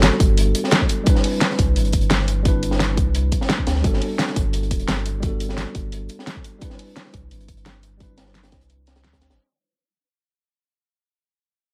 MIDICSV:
0, 0, Header, 1, 4, 480
1, 0, Start_track
1, 0, Tempo, 346821
1, 1475, Time_signature, 4, 2, 24, 8
1, 16247, End_track
2, 0, Start_track
2, 0, Title_t, "Tine electric piano"
2, 0, Program_c, 0, 4
2, 0, Control_c, 0, 64, 127
2, 0, Note_on_c, 0, 55, 81
2, 0, Note_on_c, 0, 59, 75
2, 0, Note_on_c, 0, 62, 72
2, 0, Note_on_c, 0, 66, 72
2, 0, Note_on_c, 0, 69, 89
2, 710, Note_off_c, 0, 55, 0
2, 720, Note_off_c, 0, 59, 0
2, 730, Note_off_c, 0, 62, 0
2, 740, Note_off_c, 0, 66, 0
2, 749, Note_off_c, 0, 69, 0
2, 1440, Note_on_c, 0, 55, 81
2, 1459, Note_on_c, 0, 60, 74
2, 1478, Note_on_c, 0, 62, 75
2, 1492, Control_c, 0, 64, 0
2, 1498, Note_on_c, 0, 64, 72
2, 1518, Note_on_c, 0, 71, 88
2, 1770, Control_c, 0, 64, 127
2, 2630, Note_off_c, 0, 55, 0
2, 2639, Note_off_c, 0, 60, 0
2, 2649, Note_off_c, 0, 62, 0
2, 2659, Note_off_c, 0, 64, 0
2, 2668, Note_off_c, 0, 71, 0
2, 3358, Note_on_c, 0, 55, 77
2, 3376, Note_on_c, 0, 60, 74
2, 3397, Note_on_c, 0, 62, 74
2, 3416, Note_on_c, 0, 64, 73
2, 3435, Note_on_c, 0, 71, 89
2, 4549, Note_off_c, 0, 55, 0
2, 4558, Note_off_c, 0, 60, 0
2, 4568, Note_off_c, 0, 62, 0
2, 4577, Note_off_c, 0, 64, 0
2, 4587, Note_off_c, 0, 71, 0
2, 5279, Note_on_c, 0, 55, 78
2, 5300, Note_on_c, 0, 59, 72
2, 5320, Note_on_c, 0, 62, 72
2, 5332, Control_c, 0, 64, 0
2, 5339, Note_on_c, 0, 66, 72
2, 5359, Note_on_c, 0, 69, 86
2, 5540, Control_c, 0, 64, 127
2, 6469, Note_off_c, 0, 55, 0
2, 6480, Note_off_c, 0, 59, 0
2, 6490, Note_off_c, 0, 62, 0
2, 6499, Note_off_c, 0, 66, 0
2, 6509, Note_off_c, 0, 69, 0
2, 7202, Note_on_c, 0, 55, 78
2, 7221, Note_on_c, 0, 59, 72
2, 7241, Note_on_c, 0, 62, 70
2, 7260, Note_on_c, 0, 66, 73
2, 7280, Note_on_c, 0, 69, 86
2, 8391, Note_off_c, 0, 55, 0
2, 8400, Note_off_c, 0, 59, 0
2, 8410, Note_off_c, 0, 62, 0
2, 8420, Note_off_c, 0, 66, 0
2, 8430, Note_off_c, 0, 69, 0
2, 9118, Note_on_c, 0, 55, 75
2, 9139, Note_on_c, 0, 60, 72
2, 9159, Note_on_c, 0, 62, 70
2, 9173, Control_c, 0, 64, 0
2, 9179, Note_on_c, 0, 64, 71
2, 9198, Note_on_c, 0, 71, 83
2, 9419, Control_c, 0, 64, 127
2, 10309, Note_off_c, 0, 55, 0
2, 10319, Note_off_c, 0, 60, 0
2, 10329, Note_off_c, 0, 62, 0
2, 10339, Note_off_c, 0, 64, 0
2, 10349, Note_off_c, 0, 71, 0
2, 11039, Note_on_c, 0, 55, 78
2, 11059, Note_on_c, 0, 60, 68
2, 11077, Note_on_c, 0, 62, 69
2, 11097, Note_on_c, 0, 64, 72
2, 11116, Note_on_c, 0, 71, 85
2, 12229, Note_off_c, 0, 55, 0
2, 12239, Note_off_c, 0, 60, 0
2, 12248, Note_off_c, 0, 62, 0
2, 12258, Note_off_c, 0, 64, 0
2, 12268, Note_off_c, 0, 71, 0
2, 13012, Control_c, 0, 64, 0
2, 16247, End_track
3, 0, Start_track
3, 0, Title_t, "Sub bass"
3, 0, Program_c, 1, 38
3, 0, Note_on_c, 1, 31, 84
3, 141, Note_off_c, 1, 31, 0
3, 278, Note_on_c, 1, 31, 89
3, 738, Note_off_c, 1, 31, 0
3, 2197, Note_on_c, 1, 36, 92
3, 2438, Note_on_c, 1, 31, 81
3, 2458, Note_off_c, 1, 36, 0
3, 2653, Note_off_c, 1, 31, 0
3, 2677, Note_on_c, 1, 31, 77
3, 4115, Note_on_c, 1, 36, 86
3, 4136, Note_off_c, 1, 31, 0
3, 4577, Note_off_c, 1, 36, 0
3, 5078, Note_on_c, 1, 38, 79
3, 5294, Note_off_c, 1, 38, 0
3, 5319, Note_on_c, 1, 31, 97
3, 5534, Note_off_c, 1, 31, 0
3, 6038, Note_on_c, 1, 31, 90
3, 6518, Note_on_c, 1, 26, 94
3, 6539, Note_off_c, 1, 31, 0
3, 6733, Note_off_c, 1, 26, 0
3, 6760, Note_on_c, 1, 31, 82
3, 7821, Note_off_c, 1, 31, 0
3, 7959, Note_on_c, 1, 31, 86
3, 8418, Note_off_c, 1, 31, 0
3, 9877, Note_on_c, 1, 36, 87
3, 10119, Note_on_c, 1, 31, 78
3, 10140, Note_off_c, 1, 36, 0
3, 10334, Note_off_c, 1, 31, 0
3, 10358, Note_on_c, 1, 31, 75
3, 11798, Note_on_c, 1, 36, 88
3, 11818, Note_off_c, 1, 31, 0
3, 12519, Note_on_c, 1, 38, 84
3, 12540, Note_off_c, 1, 36, 0
3, 12882, Note_on_c, 1, 31, 83
3, 12902, Note_off_c, 1, 38, 0
3, 12985, Note_off_c, 1, 31, 0
3, 16247, End_track
4, 0, Start_track
4, 0, Title_t, "Drums"
4, 28, Note_on_c, 9, 42, 85
4, 39, Note_off_c, 9, 42, 0
4, 39, Note_on_c, 9, 38, 118
4, 39, Note_on_c, 9, 42, 76
4, 52, Note_off_c, 9, 38, 0
4, 52, Note_on_c, 9, 38, 113
4, 178, Note_off_c, 9, 42, 0
4, 190, Note_off_c, 9, 38, 0
4, 278, Note_on_c, 9, 36, 103
4, 279, Note_on_c, 9, 42, 89
4, 282, Note_off_c, 9, 42, 0
4, 282, Note_on_c, 9, 42, 59
4, 416, Note_off_c, 9, 36, 0
4, 420, Note_off_c, 9, 42, 0
4, 519, Note_on_c, 9, 42, 77
4, 526, Note_off_c, 9, 42, 0
4, 526, Note_on_c, 9, 42, 87
4, 664, Note_off_c, 9, 42, 0
4, 758, Note_on_c, 9, 42, 67
4, 759, Note_off_c, 9, 42, 0
4, 759, Note_on_c, 9, 42, 88
4, 884, Note_on_c, 9, 38, 51
4, 898, Note_off_c, 9, 42, 0
4, 985, Note_on_c, 9, 42, 89
4, 994, Note_off_c, 9, 38, 0
4, 994, Note_on_c, 9, 38, 115
4, 1000, Note_off_c, 9, 38, 0
4, 1000, Note_off_c, 9, 42, 0
4, 1000, Note_on_c, 9, 38, 116
4, 1000, Note_on_c, 9, 42, 75
4, 1121, Note_on_c, 9, 36, 59
4, 1138, Note_off_c, 9, 38, 0
4, 1138, Note_off_c, 9, 42, 0
4, 1233, Note_on_c, 9, 42, 67
4, 1238, Note_off_c, 9, 42, 0
4, 1238, Note_on_c, 9, 42, 88
4, 1259, Note_off_c, 9, 36, 0
4, 1376, Note_off_c, 9, 42, 0
4, 1470, Note_on_c, 9, 42, 90
4, 1477, Note_off_c, 9, 42, 0
4, 1477, Note_on_c, 9, 36, 121
4, 1477, Note_on_c, 9, 42, 76
4, 1597, Note_on_c, 9, 38, 47
4, 1615, Note_off_c, 9, 42, 0
4, 1616, Note_off_c, 9, 36, 0
4, 1716, Note_on_c, 9, 42, 88
4, 1722, Note_on_c, 9, 46, 80
4, 1736, Note_off_c, 9, 38, 0
4, 1855, Note_off_c, 9, 42, 0
4, 1860, Note_off_c, 9, 46, 0
4, 1948, Note_on_c, 9, 42, 84
4, 1955, Note_off_c, 9, 42, 0
4, 1955, Note_on_c, 9, 38, 117
4, 1955, Note_on_c, 9, 42, 71
4, 1956, Note_off_c, 9, 38, 0
4, 1956, Note_on_c, 9, 38, 114
4, 2082, Note_off_c, 9, 38, 0
4, 2082, Note_on_c, 9, 38, 51
4, 2093, Note_off_c, 9, 42, 0
4, 2196, Note_on_c, 9, 36, 104
4, 2197, Note_on_c, 9, 42, 87
4, 2198, Note_off_c, 9, 42, 0
4, 2198, Note_on_c, 9, 42, 58
4, 2220, Note_off_c, 9, 38, 0
4, 2335, Note_off_c, 9, 36, 0
4, 2336, Note_off_c, 9, 42, 0
4, 2437, Note_on_c, 9, 42, 71
4, 2448, Note_off_c, 9, 42, 0
4, 2448, Note_on_c, 9, 42, 80
4, 2558, Note_off_c, 9, 42, 0
4, 2558, Note_on_c, 9, 42, 43
4, 2664, Note_off_c, 9, 42, 0
4, 2664, Note_on_c, 9, 42, 69
4, 2675, Note_off_c, 9, 42, 0
4, 2675, Note_on_c, 9, 42, 85
4, 2676, Note_on_c, 9, 36, 62
4, 2784, Note_off_c, 9, 42, 0
4, 2784, Note_on_c, 9, 42, 40
4, 2814, Note_off_c, 9, 36, 0
4, 2909, Note_off_c, 9, 42, 0
4, 2909, Note_on_c, 9, 38, 105
4, 2909, Note_on_c, 9, 42, 89
4, 2914, Note_off_c, 9, 38, 0
4, 2914, Note_off_c, 9, 42, 0
4, 2914, Note_on_c, 9, 38, 116
4, 2914, Note_on_c, 9, 42, 72
4, 3038, Note_off_c, 9, 38, 0
4, 3038, Note_on_c, 9, 38, 33
4, 3053, Note_off_c, 9, 42, 0
4, 3154, Note_on_c, 9, 42, 83
4, 3158, Note_off_c, 9, 42, 0
4, 3158, Note_on_c, 9, 42, 65
4, 3177, Note_off_c, 9, 38, 0
4, 3296, Note_off_c, 9, 42, 0
4, 3395, Note_on_c, 9, 36, 114
4, 3395, Note_on_c, 9, 42, 84
4, 3533, Note_off_c, 9, 36, 0
4, 3533, Note_off_c, 9, 42, 0
4, 3637, Note_on_c, 9, 42, 84
4, 3638, Note_off_c, 9, 42, 0
4, 3638, Note_on_c, 9, 42, 66
4, 3753, Note_on_c, 9, 38, 56
4, 3777, Note_off_c, 9, 42, 0
4, 3870, Note_off_c, 9, 38, 0
4, 3870, Note_on_c, 9, 38, 112
4, 3878, Note_off_c, 9, 38, 0
4, 3878, Note_on_c, 9, 38, 113
4, 3878, Note_on_c, 9, 42, 70
4, 3879, Note_off_c, 9, 42, 0
4, 3879, Note_on_c, 9, 42, 89
4, 4016, Note_off_c, 9, 38, 0
4, 4018, Note_off_c, 9, 42, 0
4, 4115, Note_on_c, 9, 36, 102
4, 4117, Note_on_c, 9, 42, 85
4, 4118, Note_off_c, 9, 42, 0
4, 4118, Note_on_c, 9, 42, 60
4, 4254, Note_off_c, 9, 36, 0
4, 4256, Note_off_c, 9, 42, 0
4, 4353, Note_on_c, 9, 42, 83
4, 4355, Note_off_c, 9, 42, 0
4, 4355, Note_on_c, 9, 42, 69
4, 4494, Note_off_c, 9, 42, 0
4, 4590, Note_on_c, 9, 42, 67
4, 4596, Note_on_c, 9, 36, 59
4, 4597, Note_off_c, 9, 42, 0
4, 4597, Note_on_c, 9, 42, 84
4, 4722, Note_on_c, 9, 38, 53
4, 4734, Note_off_c, 9, 36, 0
4, 4735, Note_off_c, 9, 42, 0
4, 4829, Note_off_c, 9, 38, 0
4, 4829, Note_on_c, 9, 38, 99
4, 4838, Note_off_c, 9, 38, 0
4, 4838, Note_on_c, 9, 38, 111
4, 4838, Note_on_c, 9, 42, 69
4, 4839, Note_off_c, 9, 42, 0
4, 4839, Note_on_c, 9, 42, 74
4, 4960, Note_on_c, 9, 36, 59
4, 4976, Note_off_c, 9, 38, 0
4, 4977, Note_off_c, 9, 42, 0
4, 5076, Note_on_c, 9, 42, 80
4, 5080, Note_on_c, 9, 38, 90
4, 5083, Note_off_c, 9, 42, 0
4, 5083, Note_on_c, 9, 42, 73
4, 5098, Note_off_c, 9, 36, 0
4, 5200, Note_off_c, 9, 38, 0
4, 5200, Note_on_c, 9, 38, 46
4, 5221, Note_off_c, 9, 42, 0
4, 5317, Note_on_c, 9, 36, 112
4, 5317, Note_on_c, 9, 42, 70
4, 5323, Note_off_c, 9, 42, 0
4, 5323, Note_on_c, 9, 42, 83
4, 5338, Note_off_c, 9, 38, 0
4, 5447, Note_on_c, 9, 38, 52
4, 5455, Note_off_c, 9, 36, 0
4, 5461, Note_off_c, 9, 42, 0
4, 5559, Note_on_c, 9, 42, 82
4, 5564, Note_on_c, 9, 46, 71
4, 5585, Note_off_c, 9, 38, 0
4, 5697, Note_off_c, 9, 42, 0
4, 5702, Note_off_c, 9, 46, 0
4, 5792, Note_on_c, 9, 38, 108
4, 5797, Note_on_c, 9, 42, 76
4, 5800, Note_off_c, 9, 38, 0
4, 5800, Note_off_c, 9, 42, 0
4, 5800, Note_on_c, 9, 38, 111
4, 5800, Note_on_c, 9, 42, 70
4, 5912, Note_off_c, 9, 38, 0
4, 5912, Note_on_c, 9, 38, 55
4, 5938, Note_off_c, 9, 42, 0
4, 6037, Note_on_c, 9, 36, 99
4, 6039, Note_on_c, 9, 42, 82
4, 6043, Note_off_c, 9, 42, 0
4, 6043, Note_on_c, 9, 42, 67
4, 6051, Note_off_c, 9, 38, 0
4, 6176, Note_off_c, 9, 36, 0
4, 6181, Note_off_c, 9, 42, 0
4, 6272, Note_on_c, 9, 42, 77
4, 6280, Note_off_c, 9, 42, 0
4, 6280, Note_on_c, 9, 42, 71
4, 6409, Note_off_c, 9, 42, 0
4, 6409, Note_on_c, 9, 42, 38
4, 6517, Note_off_c, 9, 42, 0
4, 6517, Note_on_c, 9, 42, 66
4, 6518, Note_off_c, 9, 42, 0
4, 6518, Note_on_c, 9, 36, 56
4, 6518, Note_on_c, 9, 42, 81
4, 6637, Note_off_c, 9, 42, 0
4, 6637, Note_on_c, 9, 42, 39
4, 6656, Note_off_c, 9, 36, 0
4, 6759, Note_off_c, 9, 42, 0
4, 6759, Note_on_c, 9, 38, 107
4, 6759, Note_on_c, 9, 42, 70
4, 6762, Note_off_c, 9, 38, 0
4, 6762, Note_off_c, 9, 42, 0
4, 6762, Note_on_c, 9, 38, 116
4, 6762, Note_on_c, 9, 42, 76
4, 6878, Note_off_c, 9, 38, 0
4, 6878, Note_on_c, 9, 38, 38
4, 6900, Note_off_c, 9, 42, 0
4, 6998, Note_on_c, 9, 42, 81
4, 7000, Note_off_c, 9, 42, 0
4, 7000, Note_on_c, 9, 42, 67
4, 7016, Note_off_c, 9, 38, 0
4, 7139, Note_off_c, 9, 42, 0
4, 7231, Note_on_c, 9, 42, 81
4, 7237, Note_off_c, 9, 42, 0
4, 7237, Note_on_c, 9, 42, 75
4, 7238, Note_on_c, 9, 36, 105
4, 7376, Note_off_c, 9, 36, 0
4, 7376, Note_off_c, 9, 42, 0
4, 7478, Note_on_c, 9, 42, 84
4, 7487, Note_off_c, 9, 42, 0
4, 7487, Note_on_c, 9, 42, 69
4, 7599, Note_on_c, 9, 38, 54
4, 7625, Note_off_c, 9, 42, 0
4, 7710, Note_off_c, 9, 38, 0
4, 7710, Note_on_c, 9, 38, 105
4, 7717, Note_off_c, 9, 38, 0
4, 7717, Note_on_c, 9, 38, 106
4, 7717, Note_on_c, 9, 42, 72
4, 7719, Note_off_c, 9, 42, 0
4, 7719, Note_on_c, 9, 42, 74
4, 7855, Note_off_c, 9, 38, 0
4, 7857, Note_off_c, 9, 42, 0
4, 7955, Note_on_c, 9, 42, 85
4, 7957, Note_on_c, 9, 36, 93
4, 7968, Note_off_c, 9, 42, 0
4, 7968, Note_on_c, 9, 42, 64
4, 8096, Note_off_c, 9, 36, 0
4, 8106, Note_off_c, 9, 42, 0
4, 8196, Note_on_c, 9, 42, 72
4, 8201, Note_off_c, 9, 42, 0
4, 8201, Note_on_c, 9, 42, 86
4, 8340, Note_off_c, 9, 42, 0
4, 8427, Note_on_c, 9, 42, 60
4, 8437, Note_off_c, 9, 42, 0
4, 8437, Note_on_c, 9, 42, 83
4, 8568, Note_on_c, 9, 38, 57
4, 8575, Note_off_c, 9, 42, 0
4, 8674, Note_off_c, 9, 38, 0
4, 8674, Note_on_c, 9, 38, 102
4, 8678, Note_off_c, 9, 38, 0
4, 8678, Note_on_c, 9, 38, 103
4, 8678, Note_on_c, 9, 42, 70
4, 8682, Note_off_c, 9, 42, 0
4, 8682, Note_on_c, 9, 42, 89
4, 8800, Note_on_c, 9, 36, 55
4, 8816, Note_off_c, 9, 38, 0
4, 8820, Note_off_c, 9, 42, 0
4, 8918, Note_on_c, 9, 42, 82
4, 8920, Note_off_c, 9, 42, 0
4, 8920, Note_on_c, 9, 42, 60
4, 8939, Note_off_c, 9, 36, 0
4, 9059, Note_off_c, 9, 42, 0
4, 9153, Note_on_c, 9, 42, 85
4, 9157, Note_on_c, 9, 36, 102
4, 9160, Note_off_c, 9, 42, 0
4, 9160, Note_on_c, 9, 42, 78
4, 9274, Note_on_c, 9, 38, 47
4, 9295, Note_off_c, 9, 36, 0
4, 9298, Note_off_c, 9, 42, 0
4, 9394, Note_on_c, 9, 46, 70
4, 9399, Note_on_c, 9, 42, 89
4, 9412, Note_off_c, 9, 38, 0
4, 9532, Note_off_c, 9, 46, 0
4, 9538, Note_off_c, 9, 42, 0
4, 9634, Note_on_c, 9, 42, 73
4, 9636, Note_on_c, 9, 38, 111
4, 9640, Note_off_c, 9, 38, 0
4, 9640, Note_off_c, 9, 42, 0
4, 9640, Note_on_c, 9, 38, 102
4, 9640, Note_on_c, 9, 42, 75
4, 9760, Note_off_c, 9, 38, 0
4, 9760, Note_on_c, 9, 38, 47
4, 9779, Note_off_c, 9, 42, 0
4, 9875, Note_on_c, 9, 42, 63
4, 9876, Note_on_c, 9, 36, 93
4, 9879, Note_off_c, 9, 42, 0
4, 9879, Note_on_c, 9, 42, 90
4, 9898, Note_off_c, 9, 38, 0
4, 10015, Note_off_c, 9, 36, 0
4, 10017, Note_off_c, 9, 42, 0
4, 10119, Note_on_c, 9, 42, 74
4, 10127, Note_off_c, 9, 42, 0
4, 10127, Note_on_c, 9, 42, 75
4, 10248, Note_off_c, 9, 42, 0
4, 10248, Note_on_c, 9, 42, 40
4, 10357, Note_on_c, 9, 36, 53
4, 10358, Note_off_c, 9, 42, 0
4, 10358, Note_on_c, 9, 42, 86
4, 10362, Note_off_c, 9, 42, 0
4, 10362, Note_on_c, 9, 42, 62
4, 10477, Note_off_c, 9, 42, 0
4, 10477, Note_on_c, 9, 42, 42
4, 10495, Note_off_c, 9, 36, 0
4, 10595, Note_off_c, 9, 42, 0
4, 10595, Note_on_c, 9, 42, 88
4, 10599, Note_off_c, 9, 42, 0
4, 10599, Note_on_c, 9, 38, 99
4, 10599, Note_on_c, 9, 42, 74
4, 10604, Note_off_c, 9, 38, 0
4, 10604, Note_on_c, 9, 38, 111
4, 10715, Note_off_c, 9, 38, 0
4, 10715, Note_on_c, 9, 38, 37
4, 10737, Note_off_c, 9, 42, 0
4, 10838, Note_on_c, 9, 42, 83
4, 10843, Note_off_c, 9, 42, 0
4, 10843, Note_on_c, 9, 42, 67
4, 10853, Note_off_c, 9, 38, 0
4, 10981, Note_off_c, 9, 42, 0
4, 11077, Note_on_c, 9, 36, 100
4, 11077, Note_on_c, 9, 42, 76
4, 11089, Note_off_c, 9, 42, 0
4, 11089, Note_on_c, 9, 42, 76
4, 11216, Note_off_c, 9, 36, 0
4, 11227, Note_off_c, 9, 42, 0
4, 11315, Note_on_c, 9, 38, 99
4, 11316, Note_on_c, 9, 42, 92
4, 11319, Note_off_c, 9, 42, 0
4, 11319, Note_on_c, 9, 42, 75
4, 11434, Note_off_c, 9, 38, 0
4, 11434, Note_on_c, 9, 38, 50
4, 11458, Note_off_c, 9, 42, 0
4, 11548, Note_on_c, 9, 42, 54
4, 11557, Note_off_c, 9, 38, 0
4, 11557, Note_off_c, 9, 42, 0
4, 11557, Note_on_c, 9, 38, 103
4, 11557, Note_on_c, 9, 42, 74
4, 11672, Note_off_c, 9, 38, 0
4, 11672, Note_off_c, 9, 42, 0
4, 11672, Note_on_c, 9, 38, 91
4, 11672, Note_on_c, 9, 42, 75
4, 11789, Note_off_c, 9, 42, 0
4, 11789, Note_on_c, 9, 42, 72
4, 11794, Note_off_c, 9, 38, 0
4, 11794, Note_on_c, 9, 38, 87
4, 11795, Note_off_c, 9, 42, 0
4, 11795, Note_on_c, 9, 42, 88
4, 11797, Note_on_c, 9, 36, 91
4, 11918, Note_off_c, 9, 42, 0
4, 11918, Note_on_c, 9, 42, 57
4, 11932, Note_off_c, 9, 38, 0
4, 11935, Note_off_c, 9, 36, 0
4, 12037, Note_off_c, 9, 42, 0
4, 12037, Note_on_c, 9, 42, 77
4, 12038, Note_off_c, 9, 42, 0
4, 12038, Note_on_c, 9, 42, 82
4, 12177, Note_off_c, 9, 42, 0
4, 12276, Note_on_c, 9, 42, 86
4, 12279, Note_off_c, 9, 42, 0
4, 12279, Note_on_c, 9, 42, 76
4, 12284, Note_on_c, 9, 38, 85
4, 12396, Note_off_c, 9, 42, 0
4, 12396, Note_on_c, 9, 42, 70
4, 12401, Note_off_c, 9, 38, 0
4, 12401, Note_on_c, 9, 38, 92
4, 12516, Note_off_c, 9, 38, 0
4, 12516, Note_off_c, 9, 42, 0
4, 12516, Note_on_c, 9, 38, 102
4, 12516, Note_on_c, 9, 42, 72
4, 12518, Note_off_c, 9, 38, 0
4, 12518, Note_on_c, 9, 38, 97
4, 12523, Note_off_c, 9, 42, 0
4, 12523, Note_on_c, 9, 42, 71
4, 12638, Note_off_c, 9, 38, 0
4, 12638, Note_on_c, 9, 38, 98
4, 12640, Note_on_c, 9, 36, 53
4, 12642, Note_off_c, 9, 42, 0
4, 12642, Note_on_c, 9, 42, 69
4, 12751, Note_off_c, 9, 42, 0
4, 12751, Note_on_c, 9, 42, 70
4, 12753, Note_off_c, 9, 38, 0
4, 12753, Note_on_c, 9, 38, 96
4, 12755, Note_off_c, 9, 42, 0
4, 12755, Note_on_c, 9, 42, 85
4, 12778, Note_off_c, 9, 36, 0
4, 12874, Note_off_c, 9, 38, 0
4, 12874, Note_on_c, 9, 38, 101
4, 12878, Note_off_c, 9, 42, 0
4, 12878, Note_on_c, 9, 42, 78
4, 13013, Note_off_c, 9, 38, 0
4, 13017, Note_off_c, 9, 42, 0
4, 16247, End_track
0, 0, End_of_file